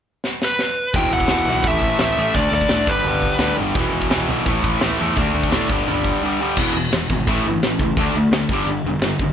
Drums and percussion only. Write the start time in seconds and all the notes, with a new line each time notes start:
0.24 snare
0.42 snare
0.59 snare
0.94 kick, floor tom
1.11 floor tom
1.20 kick
1.28 snare, floor tom
1.45 floor tom
1.63 kick, floor tom
1.81 kick, floor tom
1.99 snare, floor tom
2.17 floor tom
2.34 kick, floor tom
2.53 floor tom
2.61 kick
2.69 snare, floor tom
2.87 kick, floor tom
3.04 floor tom
3.22 kick, floor tom
3.39 snare, floor tom
3.57 floor tom
3.75 kick, floor tom
3.92 floor tom
4.02 kick
4.11 snare, floor tom
4.29 floor tom
4.46 kick, floor tom
4.64 kick, floor tom
4.81 snare, floor tom
4.99 floor tom
5.16 kick, floor tom
5.35 floor tom
5.43 kick
5.52 snare, floor tom
5.70 kick, floor tom
5.88 floor tom
6.04 kick, floor tom
6.57 kick, crash
6.93 snare, open hi-hat
7.10 kick
7.27 kick, open hi-hat
7.63 snare, open hi-hat
7.79 kick
7.97 kick, open hi-hat
8.33 snare, open hi-hat
8.49 kick
8.67 open hi-hat
9.02 snare, open hi-hat
9.19 kick